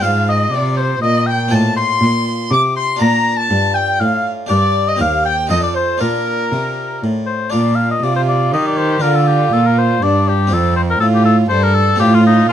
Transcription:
0.01 cello G#2, harpsichord C4 F4 C5, oboe F5
0.05 harpsichord G#2, violin F5
0.28 oboe D#5, violin D#5
0.51 cello C3, harpsichord C3, oboe D5, violin D5
0.77 oboe C5, violin C5
1.01 cello A#2, harpsichord A#2, oboe D#5, violin D#5
1.26 oboe G5, violin G5
1.48 cello A2, harpsichord C4 F4 D#5, oboe A5
1.53 harpsichord A2, violin A5
1.76 oboe C6, violin C6
2.01 cello A#2, harpsichord A#2
2.51 cello C3, harpsichord C3, oboe D6, violin D6
2.76 oboe C6, violin C6
2.96 harpsichord D4 F4 D5
3.01 harpsichord A#2, cello A#2, violin A#5, oboe A#5
3.37 oboe A5, violin A5
3.50 cello G2, harpsichord G2
3.74 oboe G5, violin G5
4.00 cello A2, harpsichord A2, oboe F5, violin F5
4.47 cello G2, harpsichord D4 G4 A#4, oboe D5, violin D5
4.51 harpsichord G2
4.88 oboe D#5, violin D#5
4.96 cello D#2, harpsichord C4 G4 A#4
5.01 harpsichord D#2, violin F5, oboe F5
5.25 oboe G5, violin G5
5.47 cello F2, harpsichord D#4 F4 A4, violin D#5, oboe D#5
5.52 harpsichord F2
5.63 violin D5, oboe D5
5.74 violin C5, oboe C5
5.98 cello A#2, harpsichord D4 F4 A#4, violin A#4, oboe A#4
6.02 harpsichord A#2
6.52 cello C3, harpsichord C3
7.03 cello A2, harpsichord A2
7.26 oboe C5
7.50 harpsichord D4 F4 A#4, oboe D5
7.54 cello A#2, harpsichord A#2
7.75 oboe F5
7.91 oboe D#5
8.04 harpsichord C3, cello C3, violin F4, oboe D5
8.16 oboe C5
8.29 oboe D5
8.53 harpsichord D#3, cello D#3, violin G4, oboe D#5
8.67 oboe D5
8.78 oboe C5
9.00 cello D3, harpsichord D4 F4, violin F4, oboe A#4
9.04 harpsichord D3
9.15 oboe A4
9.28 oboe G4
9.53 harpsichord A#2, cello A#2, oboe A4
9.66 oboe A#4
9.78 oboe C5
10.03 cello G2, harpsichord G2, violin D4, oboe D5
10.28 oboe G4
10.47 harpsichord C4 F4
10.52 harpsichord F2, cello F2, violin C4, oboe A4
10.76 oboe C5
10.90 oboe A#4
11.00 cello A2, harpsichord A2, violin F4, oboe A4
11.15 oboe G4
11.25 oboe A4
11.49 cello G2, harpsichord G2, violin A4, oboe C5
11.63 oboe A#4
11.74 oboe A4
11.96 harpsichord C4 F4, oboe G4
12.00 cello A2, harpsichord A2, violin F4
12.14 oboe F4
12.26 oboe D#4
12.49 oboe F4

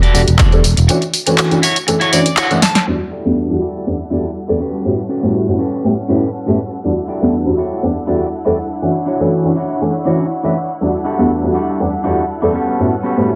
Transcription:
0.02 clean electric guitar F#4 G4 A4 D5, closed hi-hat, tambourine
0.14 fingered electric bass E1, grand piano G3 A3 B3 D4 F#4, open hi-hat, tambourine
0.28 fingered electric bass E1, closed hi-hat, tambourine
0.38 fingered electric bass E2, clean electric guitar F#4 G4 A4 D5, kick, clap, closed hi-hat, tambourine
0.52 grand piano G3 A3 B3 D4 A4, closed hi-hat, tambourine
0.63 fingered electric bass E1, muted clean electric guitar stroke, open hi-hat, tambourine
0.77 fingered electric bass E1, muted clean electric guitar stroke, closed hi-hat, tambourine
0.88 grand piano E3 A3 C#4 D4 F#4, muted clean electric guitar stroke, closed hi-hat, tambourine
1.01 muted clean electric guitar stroke, closed hi-hat, tambourine
1.14 open hi-hat, tambourine
1.26 grand piano E3 A3 C#4 D4 F#4, muted clean electric guitar stroke, closed hi-hat, tambourine
1.38 clap, closed hi-hat, tambourine
1.51 grand piano E3 A3 C#4 D4 F#4, closed hi-hat, tambourine
1.62 clean electric guitar E4 F#4 C#5, open hi-hat, tambourine
1.76 closed hi-hat, tambourine
1.87 grand piano E3 A3 C#4 D4 A4, muted clean electric guitar stroke, closed hi-hat, tambourine
2.00 clean electric guitar E4 F#4 C#5, closed hi-hat, tambourine
2.12 grand piano E3 A3 C#4 D4 F#4, clean electric guitar D5, open hi-hat, tambourine
2.26 closed hi-hat, tambourine
2.36 clean electric guitar E4 F#4 C#5 F#5, clap, closed hi-hat, tambourine
2.50 grand piano E3 A3 C#4 D4 B4, closed hi-hat, tambourine
2.62 clean electric guitar A5, muted clean electric guitar stroke, snare, open hi-hat, tambourine
2.75 muted clean electric guitar stroke, snare, closed hi-hat, tambourine
2.87 grand piano E2 G3 A3 B3 D4 F#4, string section G3 E4 A4 D5 F#5
3.11 clean electric guitar E4 F#4 G4 A4 D5
3.24 grand piano E2 G3 A3 B3 D4 F#4
3.49 grand piano E2 G3 A3 B3 D4 F#4
3.60 clean electric guitar E4 F#4 G4 A4 D5
3.86 grand piano E2 G3 A3 B3 D4 G4
4.10 grand piano E2 G3 A3 B3 D4 F#4, clean electric guitar E4 F#4 G4 A4 D5
4.48 grand piano E2 G3 A3 B3 D4 A4, clean electric guitar E4 F#4 G4 A4 D5
4.60 clean electric guitar C#4 F#4 G4 A4 B4, string section C#4 A4 B4 F#5
4.85 grand piano A2 G3 B3 C#4 E4 F#4
5.09 clean electric guitar C#4 F#4 G4 A4 B4
5.22 grand piano A2 G3 B3 C#4 E4 F#4
5.48 grand piano A2 G3 B3 C#4 E4 F#4
5.59 clean electric guitar C#4 F#4 G4 A4 B4
5.84 grand piano A2 G3 B3 C#4 E4 G4
6.08 grand piano A2 G3 B3 C#4 E4 F#4, clean electric guitar C#4 F#4 G4 A4 B4
6.46 grand piano A2 G3 B3 C#4 E4 A4, clean electric guitar C#4 F#4 G4 A4 B4
6.71 muted clean electric guitar stroke
6.83 grand piano E2 G3 A3 B3 D4 F#4, string section D4 E4
7.08 clean electric guitar E4 F#4 G4 A4 D5
7.21 grand piano E2 G3 A3 B3 D4 F#4
7.46 grand piano E2 G3 A3 B3 D4 F#4
7.57 clean electric guitar E4 F#4 G4 A4 C#5
7.82 grand piano E2 G3 A3 B3 D4 G4
8.07 grand piano E2 G3 A3 B3 D4 F#4, clean electric guitar E4 F#4 G4 A4 D5
8.45 grand piano E2 G3 A3 B3 D4 A4, clean electric guitar E4 F#4 G4 A4 D5
8.70 muted clean electric guitar stroke
8.82 grand piano E3 A3 C#4 D4 F#4, string section C#5
9.06 clean electric guitar D4 E4 F#4 C#5
9.20 grand piano E3 A3 C#4 D4 F#4
9.44 grand piano E3 A3 C#4 D4 F#4
9.56 clean electric guitar D4 E4 F#4 C#5
9.81 grand piano E3 A3 C#4 D4 A4
10.05 grand piano E3 A3 C#4 D4 F#4, clean electric guitar D4 E4 F#4 C#5
10.43 grand piano E3 A3 C#4 D4 B4, clean electric guitar D4 E4 F#4 B4
10.68 muted clean electric guitar stroke
10.81 grand piano E2 G3 A3 B3 D4 F#4, string section G3 A4
11.04 clean electric guitar D4 E4 F#4 G4 A4
11.18 grand piano E2 G3 A3 B3 D4 F#4
11.43 grand piano E2 G3 A3 B3 D4 F#4
11.54 clean electric guitar D4 E4 F#4 G4 A4
11.80 grand piano E2 G3 A3 B3 D4 G4
12.04 grand piano E2 G3 A3 B3 D4 F#4, clean electric guitar D4 E4 F#4 G4 A4
12.42 grand piano E2 G3 A3 B3 D4 A4, clean electric guitar D4 E4 F#4 G4 A4
12.54 string section G3 C#4 B4, clean electric guitar B3 C#4 F#4 G4 A4
12.79 grand piano A2 G3 B3 C#4 E4 F#4
13.03 clean electric guitar B3 C#4 F#4 G4 A4
13.17 grand piano A2 G3 B3 C#4 E4 F#4

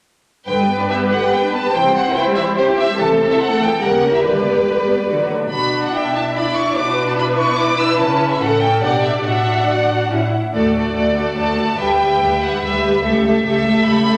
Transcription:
0.47 cello section G2, viola section D3 B4, violin section B4 G5
0.58 viola section G3
0.69 viola section B3
0.80 viola section D4, violin section D5
0.89 viola section B3, violin section G4 E5
1.01 viola section G3
1.10 viola section D3, violin section F#5
1.22 viola section G3
1.31 viola section B3, violin section B4 G5
1.43 viola section D4
1.53 viola section B3, violin section A5
1.63 viola section G3
1.73 cello section C3, viola section E3 C5, violin section C5 G5
1.85 viola section G3
1.95 viola section C4, violin section F#5
2.06 viola section E4
2.15 viola section C4, violin section E4 G5
2.26 viola section G3
2.37 viola section E3, violin section E5
2.46 viola section G3
2.56 viola section C4, violin section G4 C5
2.67 viola section E4
2.78 viola section C4, violin section E5
2.89 viola section G3
2.98 cello section C3, viola section E3 A4, violin section A4 A5
3.08 viola section A3
3.19 viola section C4
3.30 viola section E4, violin section E5
3.40 viola section C4, violin section F#5
3.49 viola section A3
3.59 viola section E3, violin section G5
3.70 viola section A3
3.80 cello section C#3, viola section G3 G4, violin section A#4 F#5
3.90 viola section A#3
4.01 viola section C#4
4.11 viola section E4, violin section E5
4.21 cello section D3, viola section D3, violin section B4 D5
4.33 viola section G3
4.46 viola section B3
4.56 viola section G3
4.65 viola section D3
4.77 viola section G3
4.87 viola section B3
4.98 viola section G3
5.08 cello section D3, viola section D3 F#4
5.20 viola section F#3
5.30 viola section A3
5.41 viola section D4
5.51 cello section B2, viola section D4 F#4, violin section B5
5.84 violin section F#5
5.93 viola section E4, violin section E5 G5
6.15 violin section A5
6.35 viola section D4 E4, violin section D5 B5
6.56 violin section C#6
6.76 cello section B2, viola section D4 F#4, violin section B4 D6
7.09 violin section A5
7.18 viola section E4, violin section B5
7.38 violin section C#6
7.59 violin section D6
7.79 violin section E6
7.99 cello section C#3, viola section C#4, violin section A5
8.31 violin section E5
8.40 cello section A2, viola section C#4 A4, violin section A4 F#5
8.61 violin section G5
8.82 cello section B2, viola section D4 G4, violin section D5 F#5
9.04 violin section E5
9.24 cello section A2, viola section D4 F#4, violin section E5 F#5
9.67 violin section D5
10.09 cello section A2, viola section C#4 E4
10.53 cello section D2, double bass section D2, viola section A3 F#4, violin section A4 D5
10.73 viola section A3 F#4, violin section A4 D5
10.94 cello section D2, double bass section D2, viola section A3 F#4, violin section A4 D5
11.16 viola section A3 F#4, violin section A4 D5
11.35 double bass section D2, cello section D2, viola section A3 F#4, violin section A4 D5 A5
11.58 viola section A3 F#4, violin section A4 D5
11.79 double bass section D2, cello section D2, viola section G3 G4, violin section B4 E5 G5
11.99 viola section G3 G4, violin section B4 E5
12.21 double bass section D2, cello section D2, viola section G3 G4, violin section B4 E5
12.41 viola section G3 G4, violin section B4 E5 F#5
12.62 double bass section D2, cello section D2, viola section G3 G4, violin section B4 E5
12.83 viola section G3 G4, violin section B4 E5
13.03 cello section C#2, double bass section C#2, viola section A3 G4, violin section A4 E5
13.24 viola section A3 G4, violin section A4 E5
13.44 cello section C#2, double bass section C#2, viola section A3 G4, violin section A4 E5
13.65 viola section A3 G4, violin section A4 E5
13.85 double bass section C#2, cello section C#2, viola section A3 G4, violin section A4 E5 B5
14.06 viola section A3 G4, violin section A4 E5

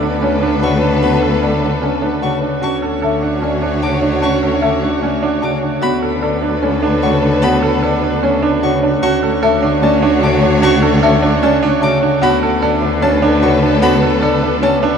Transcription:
Already playing: cello D2, harp D3 A3 B3 C#4, violin section A4 B4
0.03 grand piano D4
0.23 harp A3, grand piano C#4, marimba C#5
0.43 grand piano D4
0.63 harp C#3, grand piano F#4, marimba F#5, violin C#6
0.83 grand piano D4
1.02 harp B3, grand piano F#4, marimba F#5, violin B5
1.23 grand piano A4
1.43 harp D3, grand piano A4, marimba D5
1.62 grand piano D4
1.82 harp A3, grand piano C#4, marimba C#5
2.02 grand piano D4
2.22 harp C#3, grand piano F#4, marimba F#5, violin C#6
2.42 grand piano D4
2.62 cello D2, harp C#4, grand piano F#4, violin section F#4 C#5, marimba A5, violin C#6
2.82 grand piano A4
3.02 harp D3, grand piano A4, marimba E5
3.22 grand piano D4
3.42 harp A3, grand piano C#4, marimba D5
3.62 grand piano D4
3.82 harp C#3, grand piano F#4, marimba A5, violin D6
4.02 grand piano D4
4.22 harp C#4, grand piano F#4, marimba A5, violin C#6
4.43 grand piano A4
4.61 harp D3, grand piano A4, marimba E5
4.82 grand piano D4
5.01 harp A3, grand piano C#4, marimba D5
5.23 grand piano D4
5.42 harp C#3, grand piano F#4, marimba A5, violin D6
5.63 grand piano D4
5.82 cello D2, harp B3, grand piano F#4, violin section A4 B4, marimba F#5, violin B5
6.02 grand piano A4
6.22 harp D3, grand piano A4, marimba D5
6.42 grand piano D4
6.63 harp A3, grand piano C#4, marimba C#5
6.83 grand piano D4
7.02 harp C#3, grand piano F#4, marimba F#5, violin C#6
7.23 grand piano D4
7.42 harp B3, grand piano F#4, marimba F#5, violin B5
7.62 grand piano A4
7.82 harp D3, grand piano A4, marimba D5
8.03 grand piano D4
8.23 harp A3, grand piano C#4, marimba C#5
8.43 grand piano D4
8.63 harp C#3, grand piano F#4, marimba F#5, violin C#6
8.83 grand piano D4
9.02 cello D2, harp C#4, violin section F#4 C#5, grand piano F#4, marimba A5, violin C#6
9.23 grand piano A4
9.43 harp D3, grand piano A4, marimba E5
9.63 grand piano D4
9.83 harp A3, grand piano C#4, marimba D5, violin A5
10.03 grand piano D4
10.23 harp C#3, grand piano F#4, marimba A5, violin D6
10.43 grand piano D4
10.62 harp C#4, grand piano F#4, marimba A5, violin C#6
10.82 grand piano A4
11.02 harp D3, grand piano A4, marimba E5
11.23 grand piano D4
11.43 harp A3, grand piano C#4, marimba D5, violin A5
11.63 grand piano D4
11.82 harp C#3, grand piano F#4, marimba A5, violin D6
12.02 grand piano D4
12.22 cello D2, harp B3, grand piano F#4, violin section A4 B4, marimba F#5, violin B5
12.43 grand piano A4
12.62 harp D3, grand piano A4, marimba D5
12.82 grand piano D4
13.02 harp A3, grand piano C#4, marimba C#5, violin A5
13.22 grand piano D4
13.42 harp C#3, grand piano F#4, marimba F#5, violin C#6
13.62 grand piano D4
13.82 harp B3, grand piano F#4, marimba F#5, violin B5
14.03 grand piano A4
14.22 harp D3, grand piano A4, marimba D5
14.43 grand piano D4
14.62 harp A3, grand piano C#4, marimba C#5, violin A5
14.83 grand piano D4

